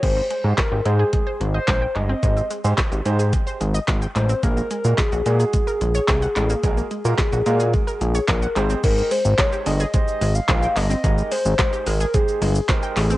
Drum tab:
CC |x---------------|----------------|----------------|----------------|
HH |x-x-x-x-x-x-x-x-|x-x-x-x-x-x-x-x-|x-x-x-x-x-x-x-x-|x-x-x-x-x-x-x-x-|
SH |----------------|xxxxxxxxxxxxxxxx|xxxxxxxxxxxxxxxx|xxxxxxxxxxxxxxxx|
CP |----x-------x-x-|----x-------x-x-|----x-------x-x-|----x-------x-x-|
SD |----o-------o---|----o-------o---|----o-------o---|----o-------o---|
BD |o---o---o---o---|o---o---o---o---|o---o---o---o---|o---o---o---o---|

CC |x---------------|----------------|
HH |x-o-x-o-x-o-x-o-|x-o-x-o-x-o-x-o-|
SH |xxxxxxxxxxxxxxxx|xxxxxxxxxxxxxxxx|
CP |----x-------x-x-|----x-------x-x-|
SD |----o-------o---|----o-------o---|
BD |o---o---o---o---|o---o---o---o---|